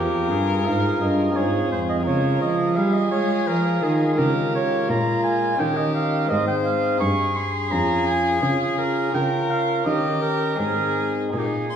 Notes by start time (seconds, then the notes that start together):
Already playing: F2 C4 F4 G4 G#4 A#4
0.30 G2 G#4
0.65 G#2 F5
1.00 G2 D#5
1.30 G#3 C4 F4
1.34 G#2 G#4 C#5
1.71 F2 C5
1.89 D#5
2.01 G#3 F4 G#4
2.06 C#3 A#4 C#5
2.40 F3 D#5
2.76 G3 G#4 F5
2.94 D#5
3.11 G#3 C#5
3.47 F3 A#4
3.83 D#3 G#4
4.14 G#3 F4 A#4
4.18 C#3 G4 A#4
4.55 C#5
4.89 A#2 F4 A#5
5.24 G#5
5.56 C#4 D#4 A#4 G5
5.60 D#3 G4
5.77 D#5
5.94 F5
6.24 G#3 C4 D#4
6.29 G#2 G#4 C5 D#5
6.47 G5
6.65 F5
7.00 G2 G#4 C#6
7.36 C6
7.68 F2 C#4 F4 G#4 A#5
7.72 F2
8.07 G#5
8.39 C#3 C#4 F4 G#4
8.43 C#3
8.78 A#4
9.11 C#3 C#4 F4 A#4 G5
9.16 C#3
9.50 F5
9.83 D#3 C#4 G4 A#4 D#5
10.22 A#4
10.55 G#3 C4 D#4
10.59 G#2 G#4 A#4
11.31 A#2 D#4 G#4
11.38 G4
11.46 G#4
11.70 C6